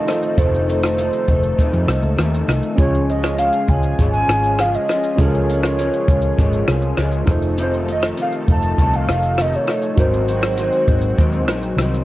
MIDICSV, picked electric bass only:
0, 0, Header, 1, 2, 480
1, 0, Start_track
1, 0, Key_signature, -5, "major"
1, 0, Tempo, 599880
1, 304, Time_signature, 4, 2, 24, 8
1, 9635, End_track
2, 0, Start_track
2, 0, Title_t, "Picked electric bass"
2, 0, Program_c, 0, 34
2, 303, Note_on_c, 0, 29, 107
2, 873, Note_off_c, 0, 29, 0
2, 1025, Note_on_c, 0, 29, 96
2, 1217, Note_off_c, 0, 29, 0
2, 1384, Note_on_c, 0, 41, 93
2, 1480, Note_off_c, 0, 41, 0
2, 1499, Note_on_c, 0, 36, 96
2, 1597, Note_off_c, 0, 36, 0
2, 1622, Note_on_c, 0, 37, 92
2, 1719, Note_off_c, 0, 37, 0
2, 1744, Note_on_c, 0, 39, 87
2, 1936, Note_off_c, 0, 39, 0
2, 1985, Note_on_c, 0, 36, 88
2, 2081, Note_off_c, 0, 36, 0
2, 2225, Note_on_c, 0, 37, 103
2, 2795, Note_off_c, 0, 37, 0
2, 2951, Note_on_c, 0, 37, 98
2, 3140, Note_off_c, 0, 37, 0
2, 3190, Note_on_c, 0, 32, 89
2, 3380, Note_off_c, 0, 32, 0
2, 3428, Note_on_c, 0, 32, 87
2, 3810, Note_off_c, 0, 32, 0
2, 4146, Note_on_c, 0, 37, 109
2, 4715, Note_off_c, 0, 37, 0
2, 4868, Note_on_c, 0, 37, 93
2, 5058, Note_off_c, 0, 37, 0
2, 5110, Note_on_c, 0, 32, 86
2, 5300, Note_off_c, 0, 32, 0
2, 5347, Note_on_c, 0, 36, 96
2, 5538, Note_off_c, 0, 36, 0
2, 5583, Note_on_c, 0, 37, 91
2, 5775, Note_off_c, 0, 37, 0
2, 5824, Note_on_c, 0, 29, 89
2, 6496, Note_off_c, 0, 29, 0
2, 6789, Note_on_c, 0, 29, 96
2, 6979, Note_off_c, 0, 29, 0
2, 7027, Note_on_c, 0, 36, 95
2, 7267, Note_on_c, 0, 29, 97
2, 7279, Note_off_c, 0, 36, 0
2, 7650, Note_off_c, 0, 29, 0
2, 7985, Note_on_c, 0, 32, 99
2, 8554, Note_off_c, 0, 32, 0
2, 8705, Note_on_c, 0, 32, 94
2, 8896, Note_off_c, 0, 32, 0
2, 8951, Note_on_c, 0, 39, 87
2, 9190, Note_off_c, 0, 39, 0
2, 9190, Note_on_c, 0, 34, 92
2, 9379, Note_off_c, 0, 34, 0
2, 9418, Note_on_c, 0, 36, 84
2, 9612, Note_off_c, 0, 36, 0
2, 9635, End_track
0, 0, End_of_file